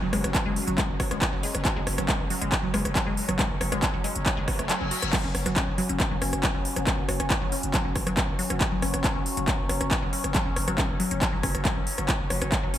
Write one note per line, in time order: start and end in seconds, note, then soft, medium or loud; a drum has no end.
0.00 0.12 F#1 medium
0.00 5.12 F#3 medium
0.00 0.05 F#3 loud
0.00 5.12 C#4 medium
0.13 0.24 F#1 loud
0.13 0.17 G#3 loud
0.13 cross-stick loud
0.13 open hi-hat loud
0.24 0.34 F#1 medium
0.24 cross-stick loud
0.24 closed hi-hat medium
0.35 0.37 F#3 loud
0.35 kick loud
0.35 clap loud
0.35 closed hi-hat medium
0.46 0.56 F#1 medium
0.46 0.50 G#3 loud
0.56 open hi-hat loud
0.67 0.78 F#1 medium
0.67 0.70 F#3 loud
0.67 closed hi-hat medium
0.78 0.82 G#3 loud
0.78 kick loud
0.78 clap loud
0.78 closed hi-hat medium
0.89 0.99 F#1 medium
1.00 1.11 F#1 loud
1.00 1.02 F#3 loud
1.00 kick medium
1.00 cross-stick loud
1.00 open hi-hat loud
1.11 1.21 F#1 medium
1.11 1.15 G#3 loud
1.11 cross-stick medium
1.11 closed hi-hat medium
1.22 kick loud
1.22 clap loud
1.22 closed hi-hat medium
1.33 1.43 F#1 medium
1.33 1.35 F#3 loud
1.43 1.47 G#3 loud
1.43 open hi-hat loud
1.55 1.65 F#1 medium
1.55 cross-stick medium
1.55 closed hi-hat medium
1.65 1.68 F#3 loud
1.65 kick loud
1.65 clap loud
1.65 closed hi-hat medium
1.76 1.86 F#1 medium
1.76 1.80 G#3 loud
1.87 1.98 F#1 loud
1.87 cross-stick medium
1.87 open hi-hat loud
1.98 2.08 F#1 medium
1.98 2.00 F#3 loud
1.98 cross-stick loud
1.98 closed hi-hat medium
2.09 2.13 G#3 loud
2.09 kick loud
2.09 clap loud
2.09 closed hi-hat medium
2.20 2.30 F#1 medium
2.30 2.33 F#3 loud
2.30 open hi-hat loud
2.41 2.52 F#1 medium
2.41 2.45 G#3 loud
2.41 closed hi-hat medium
2.52 kick loud
2.52 clap loud
2.52 closed hi-hat medium
2.63 2.73 F#1 medium
2.63 2.66 F#3 loud
2.74 2.84 F#1 loud
2.74 2.78 G#3 loud
2.74 cross-stick loud
2.74 open hi-hat loud
2.85 2.95 F#1 medium
2.85 cross-stick medium
2.85 closed hi-hat medium
2.95 2.98 F#3 loud
2.95 kick loud
2.95 clap loud
2.95 closed hi-hat medium
3.07 3.17 F#1 medium
3.07 3.11 G#3 loud
3.17 open hi-hat loud
3.28 3.39 F#1 medium
3.28 3.31 F#3 loud
3.28 cross-stick medium
3.28 closed hi-hat medium
3.39 3.43 G#3 loud
3.39 kick loud
3.39 clap loud
3.39 closed hi-hat medium
3.50 3.60 F#1 medium
3.61 3.71 F#1 loud
3.61 3.63 F#3 loud
3.61 cross-stick loud
3.61 open hi-hat loud
3.72 3.82 F#1 medium
3.72 3.76 G#3 loud
3.72 cross-stick loud
3.72 closed hi-hat medium
3.83 kick loud
3.83 clap loud
3.83 closed hi-hat medium
3.94 4.04 F#1 medium
3.94 3.96 F#3 loud
4.04 4.08 G#3 loud
4.04 open hi-hat loud
4.16 4.26 F#1 medium
4.16 closed hi-hat medium
4.26 4.28 F#3 loud
4.26 kick loud
4.26 clap loud
4.26 closed hi-hat medium
4.26 reverse cymbal medium
4.37 4.47 F#1 medium
4.37 4.41 G#3 loud
4.48 4.58 F#1 loud
4.48 4.50 F#3 loud
4.48 kick medium
4.48 cross-stick medium
4.48 open hi-hat loud
4.59 4.69 F#1 medium
4.59 4.65 A3 medium
4.59 cross-stick medium
4.59 closed hi-hat medium
4.69 4.76 F#3 medium
4.69 clap loud
4.69 closed hi-hat medium
4.81 4.91 F#1 medium
4.81 4.84 C#4 medium
4.91 4.97 F#4 medium
4.91 open hi-hat loud
5.02 5.13 F#1 medium
5.02 cross-stick medium
5.02 closed hi-hat medium
5.13 5.15 F#3 loud
5.13 12.78 F#3 medium
5.13 12.78 C#4 medium
5.13 kick loud
5.13 clap loud
5.13 closed hi-hat medium
5.13 crash medium
5.24 5.34 F#1 medium
5.24 5.28 C#4 medium
5.35 5.45 F#1 loud
5.35 cross-stick medium
5.35 open hi-hat loud
5.46 5.56 F#1 medium
5.46 5.48 F#3 loud
5.46 cross-stick medium
5.46 closed hi-hat medium
5.56 5.60 C#4 medium
5.56 kick loud
5.56 clap loud
5.56 closed hi-hat medium
5.68 5.78 F#1 medium
5.78 5.81 F#3 loud
5.78 open hi-hat loud
5.89 6.00 F#1 medium
5.89 5.93 C#4 medium
5.89 closed hi-hat medium
6.00 kick loud
6.00 clap loud
6.00 closed hi-hat medium
6.11 6.21 F#1 medium
6.11 6.13 F#3 loud
6.22 6.32 F#1 loud
6.22 6.26 C#4 medium
6.22 cross-stick medium
6.22 open hi-hat loud
6.33 6.43 F#1 medium
6.33 cross-stick medium
6.33 closed hi-hat medium
6.43 6.46 F#3 loud
6.43 kick loud
6.43 clap loud
6.43 closed hi-hat medium
6.55 6.65 F#1 medium
6.55 6.58 C#4 medium
6.65 open hi-hat loud
6.76 6.87 F#1 medium
6.76 6.79 F#3 loud
6.76 cross-stick medium
6.76 closed hi-hat medium
6.87 6.91 C#4 medium
6.87 kick loud
6.87 clap loud
6.87 closed hi-hat medium
6.98 7.08 F#1 medium
7.09 7.19 F#1 loud
7.09 7.11 F#3 loud
7.09 cross-stick medium
7.09 open hi-hat loud
7.20 7.30 F#1 medium
7.20 7.24 C#4 medium
7.20 cross-stick medium
7.20 closed hi-hat medium
7.30 kick loud
7.30 clap loud
7.30 closed hi-hat medium
7.42 7.52 F#1 medium
7.42 7.44 F#3 loud
7.52 7.56 C#4 medium
7.52 open hi-hat loud
7.63 7.74 F#1 medium
7.63 closed hi-hat medium
7.74 7.76 F#3 loud
7.74 kick loud
7.74 clap loud
7.74 closed hi-hat medium
7.85 7.95 F#1 medium
7.85 7.89 C#4 medium
7.96 8.06 F#1 loud
7.96 kick medium
7.96 cross-stick medium
7.96 open hi-hat loud
8.07 8.17 F#1 medium
8.07 8.09 F#3 loud
8.07 cross-stick medium
8.07 closed hi-hat medium
8.17 8.21 C#4 medium
8.17 kick loud
8.17 clap loud
8.17 closed hi-hat medium
8.28 8.39 F#1 medium
8.39 8.41 F#3 loud
8.39 open hi-hat loud
8.50 8.61 F#1 medium
8.50 8.54 C#4 medium
8.50 cross-stick medium
8.50 closed hi-hat medium
8.61 kick loud
8.61 clap loud
8.61 closed hi-hat medium
8.72 8.82 F#1 medium
8.72 8.74 F#3 loud
8.82 8.93 F#1 loud
8.82 8.87 C#4 medium
8.82 cross-stick medium
8.82 open hi-hat loud
8.94 9.04 F#1 medium
8.94 cross-stick medium
8.94 closed hi-hat medium
9.04 9.07 F#3 loud
9.04 kick loud
9.04 clap loud
9.04 closed hi-hat medium
9.15 9.26 F#1 medium
9.15 9.19 C#4 medium
9.26 open hi-hat loud
9.37 9.47 F#1 medium
9.37 9.39 F#3 loud
9.37 closed hi-hat medium
9.48 9.52 C#4 medium
9.48 kick loud
9.48 clap loud
9.48 closed hi-hat medium
9.59 9.69 F#1 medium
9.69 9.80 F#1 loud
9.69 9.72 F#3 loud
9.69 cross-stick medium
9.69 open hi-hat loud
9.81 9.91 F#1 medium
9.81 9.85 C#4 medium
9.81 cross-stick medium
9.81 closed hi-hat medium
9.91 kick loud
9.91 clap loud
9.91 closed hi-hat medium
10.02 10.13 F#1 medium
10.02 10.05 F#3 loud
10.13 10.17 C#4 medium
10.13 open hi-hat loud
10.24 10.34 F#1 medium
10.24 cross-stick medium
10.24 closed hi-hat medium
10.35 10.37 F#3 loud
10.35 kick loud
10.35 clap loud
10.35 closed hi-hat medium
10.46 10.56 F#1 medium
10.46 10.50 C#4 medium
10.56 10.67 F#1 loud
10.56 cross-stick medium
10.56 open hi-hat loud
10.68 10.78 F#1 medium
10.68 10.70 F#3 loud
10.68 cross-stick medium
10.68 closed hi-hat medium
10.78 10.82 C#4 medium
10.78 kick loud
10.78 clap loud
10.78 closed hi-hat medium
10.89 11.00 F#1 medium
11.00 11.02 F#3 loud
11.00 open hi-hat loud
11.11 11.21 F#1 medium
11.11 11.15 C#4 medium
11.11 closed hi-hat medium
11.22 kick loud
11.22 clap loud
11.22 closed hi-hat medium
11.33 11.43 F#1 medium
11.33 11.35 F#3 loud
11.43 11.54 F#1 loud
11.43 11.47 C#4 medium
11.43 kick medium
11.43 cross-stick medium
11.43 open hi-hat loud
11.55 11.65 F#1 medium
11.55 cross-stick medium
11.55 closed hi-hat medium
11.65 11.68 F#3 loud
11.65 kick loud
11.65 clap loud
11.65 closed hi-hat medium
11.76 11.87 F#1 medium
11.76 11.80 C#4 medium
11.87 open hi-hat loud
11.98 12.08 F#1 medium
11.98 12.00 F#3 loud
11.98 cross-stick medium
11.98 closed hi-hat medium
12.08 12.13 C#4 medium
12.08 kick loud
12.08 clap loud
12.08 closed hi-hat medium
12.20 12.30 F#1 medium
12.30 12.41 F#1 loud
12.30 12.33 F#3 loud
12.30 cross-stick medium
12.30 open hi-hat loud
12.42 12.52 F#1 medium
12.42 12.45 C#4 medium
12.42 cross-stick medium
12.42 closed hi-hat medium
12.52 kick loud
12.52 clap loud
12.52 closed hi-hat medium
12.63 12.74 F#1 medium
12.63 12.66 F#3 loud
12.74 12.78 C#4 medium
12.74 open hi-hat loud